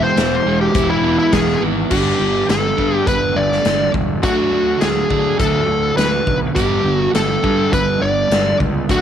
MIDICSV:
0, 0, Header, 1, 6, 480
1, 0, Start_track
1, 0, Tempo, 581395
1, 1578, Time_signature, 4, 2, 24, 8
1, 7441, End_track
2, 0, Start_track
2, 0, Title_t, "Lead electric guitar"
2, 0, Program_c, 0, 29
2, 25, Note_on_c, 0, 72, 85
2, 487, Note_off_c, 0, 72, 0
2, 504, Note_on_c, 0, 67, 81
2, 734, Note_off_c, 0, 67, 0
2, 739, Note_on_c, 0, 64, 75
2, 971, Note_off_c, 0, 64, 0
2, 983, Note_on_c, 0, 64, 83
2, 1097, Note_off_c, 0, 64, 0
2, 1099, Note_on_c, 0, 68, 97
2, 1331, Note_off_c, 0, 68, 0
2, 1577, Note_on_c, 0, 67, 81
2, 2024, Note_off_c, 0, 67, 0
2, 2064, Note_on_c, 0, 69, 70
2, 2444, Note_off_c, 0, 69, 0
2, 2444, Note_on_c, 0, 67, 70
2, 2538, Note_off_c, 0, 67, 0
2, 2541, Note_on_c, 0, 71, 94
2, 2777, Note_on_c, 0, 74, 99
2, 2787, Note_off_c, 0, 71, 0
2, 3225, Note_off_c, 0, 74, 0
2, 3492, Note_on_c, 0, 66, 85
2, 3968, Note_on_c, 0, 68, 73
2, 3990, Note_off_c, 0, 66, 0
2, 4449, Note_off_c, 0, 68, 0
2, 4452, Note_on_c, 0, 69, 78
2, 4927, Note_off_c, 0, 69, 0
2, 4930, Note_on_c, 0, 71, 82
2, 5270, Note_off_c, 0, 71, 0
2, 5411, Note_on_c, 0, 67, 89
2, 5741, Note_off_c, 0, 67, 0
2, 5741, Note_on_c, 0, 66, 89
2, 5863, Note_off_c, 0, 66, 0
2, 5902, Note_on_c, 0, 69, 86
2, 6381, Note_off_c, 0, 69, 0
2, 6385, Note_on_c, 0, 71, 87
2, 6619, Note_on_c, 0, 74, 108
2, 6631, Note_off_c, 0, 71, 0
2, 7068, Note_off_c, 0, 74, 0
2, 7353, Note_on_c, 0, 66, 86
2, 7441, Note_off_c, 0, 66, 0
2, 7441, End_track
3, 0, Start_track
3, 0, Title_t, "Overdriven electric guitar"
3, 0, Program_c, 1, 29
3, 0, Note_on_c, 1, 56, 75
3, 0, Note_on_c, 1, 59, 76
3, 375, Note_off_c, 1, 56, 0
3, 617, Note_off_c, 1, 59, 0
3, 853, Note_on_c, 1, 59, 70
3, 1099, Note_on_c, 1, 52, 71
3, 1325, Note_off_c, 1, 59, 0
3, 1334, Note_on_c, 1, 59, 73
3, 1574, Note_off_c, 1, 59, 0
3, 1575, Note_off_c, 1, 52, 0
3, 1584, Note_on_c, 1, 59, 94
3, 1586, Note_on_c, 1, 62, 97
3, 2284, Note_off_c, 1, 62, 0
3, 2286, Note_off_c, 1, 59, 0
3, 2287, Note_on_c, 1, 62, 75
3, 2295, Note_on_c, 1, 59, 73
3, 3482, Note_off_c, 1, 59, 0
3, 3508, Note_off_c, 1, 62, 0
3, 3511, Note_on_c, 1, 62, 89
3, 4210, Note_off_c, 1, 62, 0
3, 4213, Note_on_c, 1, 62, 88
3, 4220, Note_on_c, 1, 57, 72
3, 5407, Note_off_c, 1, 57, 0
3, 5438, Note_off_c, 1, 62, 0
3, 5441, Note_on_c, 1, 59, 103
3, 5441, Note_on_c, 1, 62, 107
3, 6120, Note_off_c, 1, 62, 0
3, 6129, Note_off_c, 1, 59, 0
3, 6130, Note_on_c, 1, 62, 82
3, 6139, Note_on_c, 1, 59, 68
3, 7323, Note_off_c, 1, 62, 0
3, 7328, Note_off_c, 1, 59, 0
3, 7363, Note_on_c, 1, 62, 103
3, 7441, Note_off_c, 1, 62, 0
3, 7441, End_track
4, 0, Start_track
4, 0, Title_t, "Overdriven electric guitar"
4, 0, Program_c, 2, 29
4, 0, Note_on_c, 2, 52, 73
4, 0, Note_on_c, 2, 56, 64
4, 0, Note_on_c, 2, 59, 71
4, 131, Note_off_c, 2, 52, 0
4, 138, Note_off_c, 2, 56, 0
4, 141, Note_on_c, 2, 52, 71
4, 381, Note_off_c, 2, 59, 0
4, 381, Note_on_c, 2, 56, 76
4, 618, Note_on_c, 2, 64, 73
4, 846, Note_off_c, 2, 56, 0
4, 856, Note_on_c, 2, 56, 66
4, 1094, Note_on_c, 2, 59, 74
4, 1327, Note_off_c, 2, 52, 0
4, 1337, Note_on_c, 2, 52, 74
4, 1565, Note_on_c, 2, 43, 75
4, 1569, Note_off_c, 2, 52, 0
4, 1571, Note_off_c, 2, 56, 0
4, 1572, Note_on_c, 2, 50, 85
4, 1575, Note_on_c, 2, 55, 83
4, 1576, Note_off_c, 2, 59, 0
4, 1577, Note_off_c, 2, 64, 0
4, 1797, Note_off_c, 2, 43, 0
4, 1800, Note_off_c, 2, 50, 0
4, 1802, Note_off_c, 2, 55, 0
4, 1807, Note_on_c, 2, 43, 69
4, 1811, Note_on_c, 2, 50, 76
4, 2028, Note_off_c, 2, 43, 0
4, 2030, Note_off_c, 2, 50, 0
4, 2051, Note_on_c, 2, 43, 71
4, 2052, Note_on_c, 2, 50, 79
4, 2270, Note_off_c, 2, 43, 0
4, 2271, Note_off_c, 2, 50, 0
4, 2286, Note_on_c, 2, 43, 80
4, 2292, Note_on_c, 2, 50, 97
4, 2292, Note_on_c, 2, 55, 102
4, 2514, Note_off_c, 2, 43, 0
4, 2517, Note_off_c, 2, 50, 0
4, 2520, Note_off_c, 2, 55, 0
4, 2524, Note_on_c, 2, 43, 71
4, 2527, Note_on_c, 2, 50, 77
4, 2747, Note_off_c, 2, 43, 0
4, 2748, Note_off_c, 2, 50, 0
4, 2766, Note_on_c, 2, 43, 57
4, 2773, Note_on_c, 2, 50, 66
4, 2988, Note_off_c, 2, 43, 0
4, 2991, Note_off_c, 2, 50, 0
4, 3007, Note_on_c, 2, 43, 88
4, 3011, Note_on_c, 2, 50, 91
4, 3012, Note_on_c, 2, 55, 86
4, 3238, Note_off_c, 2, 43, 0
4, 3240, Note_off_c, 2, 50, 0
4, 3241, Note_off_c, 2, 55, 0
4, 3248, Note_on_c, 2, 43, 73
4, 3250, Note_on_c, 2, 50, 78
4, 3469, Note_off_c, 2, 43, 0
4, 3470, Note_off_c, 2, 50, 0
4, 3483, Note_on_c, 2, 50, 77
4, 3486, Note_on_c, 2, 54, 83
4, 3492, Note_on_c, 2, 57, 97
4, 3717, Note_off_c, 2, 50, 0
4, 3718, Note_off_c, 2, 54, 0
4, 3721, Note_off_c, 2, 57, 0
4, 3727, Note_on_c, 2, 50, 83
4, 3731, Note_on_c, 2, 54, 84
4, 3734, Note_on_c, 2, 57, 103
4, 3959, Note_off_c, 2, 50, 0
4, 3961, Note_off_c, 2, 54, 0
4, 3962, Note_off_c, 2, 57, 0
4, 3968, Note_on_c, 2, 50, 74
4, 3969, Note_on_c, 2, 54, 67
4, 4190, Note_off_c, 2, 50, 0
4, 4190, Note_off_c, 2, 54, 0
4, 4213, Note_on_c, 2, 50, 77
4, 4217, Note_on_c, 2, 54, 86
4, 4432, Note_off_c, 2, 50, 0
4, 4434, Note_off_c, 2, 54, 0
4, 4449, Note_on_c, 2, 50, 83
4, 4455, Note_on_c, 2, 54, 84
4, 4457, Note_on_c, 2, 57, 81
4, 4677, Note_off_c, 2, 50, 0
4, 4683, Note_off_c, 2, 54, 0
4, 4684, Note_off_c, 2, 57, 0
4, 4687, Note_on_c, 2, 50, 62
4, 4695, Note_on_c, 2, 54, 70
4, 4910, Note_off_c, 2, 50, 0
4, 4913, Note_off_c, 2, 54, 0
4, 4934, Note_on_c, 2, 50, 67
4, 4938, Note_on_c, 2, 54, 85
4, 5153, Note_off_c, 2, 50, 0
4, 5155, Note_off_c, 2, 54, 0
4, 5171, Note_on_c, 2, 50, 69
4, 5176, Note_on_c, 2, 54, 68
4, 5392, Note_off_c, 2, 50, 0
4, 5394, Note_off_c, 2, 54, 0
4, 5409, Note_on_c, 2, 43, 77
4, 5416, Note_on_c, 2, 50, 84
4, 5419, Note_on_c, 2, 55, 96
4, 5638, Note_off_c, 2, 43, 0
4, 5641, Note_off_c, 2, 50, 0
4, 5646, Note_off_c, 2, 55, 0
4, 5648, Note_on_c, 2, 43, 61
4, 5651, Note_on_c, 2, 50, 85
4, 5871, Note_off_c, 2, 43, 0
4, 5872, Note_off_c, 2, 50, 0
4, 5900, Note_on_c, 2, 43, 82
4, 5900, Note_on_c, 2, 50, 73
4, 6117, Note_off_c, 2, 43, 0
4, 6117, Note_off_c, 2, 50, 0
4, 6138, Note_on_c, 2, 43, 88
4, 6142, Note_on_c, 2, 50, 105
4, 6146, Note_on_c, 2, 55, 92
4, 6366, Note_off_c, 2, 43, 0
4, 6368, Note_off_c, 2, 50, 0
4, 6370, Note_off_c, 2, 55, 0
4, 6378, Note_on_c, 2, 43, 70
4, 6381, Note_on_c, 2, 50, 73
4, 6596, Note_off_c, 2, 43, 0
4, 6598, Note_off_c, 2, 50, 0
4, 6610, Note_on_c, 2, 43, 63
4, 6615, Note_on_c, 2, 50, 61
4, 6832, Note_off_c, 2, 43, 0
4, 6835, Note_off_c, 2, 50, 0
4, 6856, Note_on_c, 2, 43, 84
4, 6859, Note_on_c, 2, 50, 96
4, 6865, Note_on_c, 2, 55, 94
4, 7085, Note_off_c, 2, 43, 0
4, 7087, Note_off_c, 2, 50, 0
4, 7090, Note_off_c, 2, 55, 0
4, 7098, Note_on_c, 2, 43, 64
4, 7100, Note_on_c, 2, 50, 77
4, 7317, Note_off_c, 2, 43, 0
4, 7318, Note_off_c, 2, 50, 0
4, 7340, Note_on_c, 2, 50, 79
4, 7344, Note_on_c, 2, 54, 89
4, 7349, Note_on_c, 2, 57, 86
4, 7441, Note_off_c, 2, 50, 0
4, 7441, Note_off_c, 2, 54, 0
4, 7441, Note_off_c, 2, 57, 0
4, 7441, End_track
5, 0, Start_track
5, 0, Title_t, "Fingered electric bass"
5, 0, Program_c, 3, 33
5, 134, Note_on_c, 3, 28, 83
5, 316, Note_off_c, 3, 28, 0
5, 377, Note_on_c, 3, 28, 78
5, 558, Note_off_c, 3, 28, 0
5, 617, Note_on_c, 3, 28, 85
5, 977, Note_off_c, 3, 28, 0
5, 1096, Note_on_c, 3, 28, 97
5, 1277, Note_off_c, 3, 28, 0
5, 1340, Note_on_c, 3, 32, 81
5, 1519, Note_off_c, 3, 32, 0
5, 1579, Note_on_c, 3, 31, 84
5, 1758, Note_off_c, 3, 31, 0
5, 1811, Note_on_c, 3, 31, 97
5, 1993, Note_off_c, 3, 31, 0
5, 2053, Note_on_c, 3, 31, 80
5, 2234, Note_off_c, 3, 31, 0
5, 2298, Note_on_c, 3, 43, 82
5, 2477, Note_off_c, 3, 43, 0
5, 2536, Note_on_c, 3, 31, 75
5, 2716, Note_off_c, 3, 31, 0
5, 2774, Note_on_c, 3, 31, 82
5, 2955, Note_off_c, 3, 31, 0
5, 3016, Note_on_c, 3, 31, 99
5, 3196, Note_off_c, 3, 31, 0
5, 3253, Note_on_c, 3, 28, 74
5, 3495, Note_off_c, 3, 28, 0
5, 3495, Note_on_c, 3, 38, 84
5, 3676, Note_off_c, 3, 38, 0
5, 3733, Note_on_c, 3, 38, 86
5, 3914, Note_off_c, 3, 38, 0
5, 3972, Note_on_c, 3, 38, 75
5, 4154, Note_off_c, 3, 38, 0
5, 4215, Note_on_c, 3, 50, 85
5, 4396, Note_off_c, 3, 50, 0
5, 4456, Note_on_c, 3, 38, 78
5, 4636, Note_off_c, 3, 38, 0
5, 4692, Note_on_c, 3, 38, 78
5, 4874, Note_off_c, 3, 38, 0
5, 4932, Note_on_c, 3, 38, 97
5, 5114, Note_off_c, 3, 38, 0
5, 5175, Note_on_c, 3, 35, 78
5, 5356, Note_off_c, 3, 35, 0
5, 5419, Note_on_c, 3, 31, 89
5, 5599, Note_off_c, 3, 31, 0
5, 5647, Note_on_c, 3, 31, 95
5, 5832, Note_off_c, 3, 31, 0
5, 5891, Note_on_c, 3, 31, 82
5, 6074, Note_off_c, 3, 31, 0
5, 6141, Note_on_c, 3, 43, 84
5, 6321, Note_off_c, 3, 43, 0
5, 6380, Note_on_c, 3, 31, 76
5, 6560, Note_off_c, 3, 31, 0
5, 6615, Note_on_c, 3, 31, 90
5, 6797, Note_off_c, 3, 31, 0
5, 6854, Note_on_c, 3, 31, 103
5, 7037, Note_off_c, 3, 31, 0
5, 7100, Note_on_c, 3, 37, 93
5, 7281, Note_off_c, 3, 37, 0
5, 7342, Note_on_c, 3, 38, 88
5, 7441, Note_off_c, 3, 38, 0
5, 7441, End_track
6, 0, Start_track
6, 0, Title_t, "Drums"
6, 142, Note_on_c, 9, 42, 75
6, 150, Note_on_c, 9, 38, 117
6, 224, Note_off_c, 9, 42, 0
6, 233, Note_off_c, 9, 38, 0
6, 615, Note_on_c, 9, 42, 78
6, 619, Note_on_c, 9, 36, 127
6, 698, Note_off_c, 9, 42, 0
6, 702, Note_off_c, 9, 36, 0
6, 1093, Note_on_c, 9, 42, 70
6, 1098, Note_on_c, 9, 36, 90
6, 1101, Note_on_c, 9, 38, 106
6, 1175, Note_off_c, 9, 42, 0
6, 1180, Note_off_c, 9, 36, 0
6, 1184, Note_off_c, 9, 38, 0
6, 1224, Note_on_c, 9, 38, 29
6, 1307, Note_off_c, 9, 38, 0
6, 1574, Note_on_c, 9, 49, 98
6, 1578, Note_on_c, 9, 36, 101
6, 1656, Note_off_c, 9, 49, 0
6, 1660, Note_off_c, 9, 36, 0
6, 2057, Note_on_c, 9, 42, 66
6, 2066, Note_on_c, 9, 38, 108
6, 2140, Note_off_c, 9, 42, 0
6, 2148, Note_off_c, 9, 38, 0
6, 2297, Note_on_c, 9, 36, 67
6, 2380, Note_off_c, 9, 36, 0
6, 2536, Note_on_c, 9, 36, 124
6, 2536, Note_on_c, 9, 42, 71
6, 2619, Note_off_c, 9, 36, 0
6, 2619, Note_off_c, 9, 42, 0
6, 2906, Note_on_c, 9, 38, 30
6, 2988, Note_off_c, 9, 38, 0
6, 3012, Note_on_c, 9, 42, 63
6, 3020, Note_on_c, 9, 38, 100
6, 3094, Note_off_c, 9, 42, 0
6, 3102, Note_off_c, 9, 38, 0
6, 3254, Note_on_c, 9, 36, 90
6, 3337, Note_off_c, 9, 36, 0
6, 3492, Note_on_c, 9, 42, 61
6, 3495, Note_on_c, 9, 36, 107
6, 3575, Note_off_c, 9, 42, 0
6, 3577, Note_off_c, 9, 36, 0
6, 3971, Note_on_c, 9, 42, 63
6, 3980, Note_on_c, 9, 38, 105
6, 4054, Note_off_c, 9, 42, 0
6, 4062, Note_off_c, 9, 38, 0
6, 4215, Note_on_c, 9, 36, 75
6, 4297, Note_off_c, 9, 36, 0
6, 4453, Note_on_c, 9, 42, 68
6, 4455, Note_on_c, 9, 36, 114
6, 4536, Note_off_c, 9, 42, 0
6, 4538, Note_off_c, 9, 36, 0
6, 4936, Note_on_c, 9, 42, 63
6, 4945, Note_on_c, 9, 38, 96
6, 5019, Note_off_c, 9, 42, 0
6, 5027, Note_off_c, 9, 38, 0
6, 5178, Note_on_c, 9, 36, 84
6, 5260, Note_off_c, 9, 36, 0
6, 5415, Note_on_c, 9, 42, 61
6, 5417, Note_on_c, 9, 36, 106
6, 5498, Note_off_c, 9, 42, 0
6, 5500, Note_off_c, 9, 36, 0
6, 5899, Note_on_c, 9, 42, 65
6, 5907, Note_on_c, 9, 38, 110
6, 5982, Note_off_c, 9, 42, 0
6, 5990, Note_off_c, 9, 38, 0
6, 6141, Note_on_c, 9, 36, 79
6, 6224, Note_off_c, 9, 36, 0
6, 6381, Note_on_c, 9, 36, 116
6, 6382, Note_on_c, 9, 42, 69
6, 6464, Note_off_c, 9, 36, 0
6, 6464, Note_off_c, 9, 42, 0
6, 6863, Note_on_c, 9, 42, 63
6, 6871, Note_on_c, 9, 38, 103
6, 6946, Note_off_c, 9, 42, 0
6, 6954, Note_off_c, 9, 38, 0
6, 7102, Note_on_c, 9, 36, 83
6, 7185, Note_off_c, 9, 36, 0
6, 7342, Note_on_c, 9, 42, 60
6, 7343, Note_on_c, 9, 36, 105
6, 7425, Note_off_c, 9, 36, 0
6, 7425, Note_off_c, 9, 42, 0
6, 7441, End_track
0, 0, End_of_file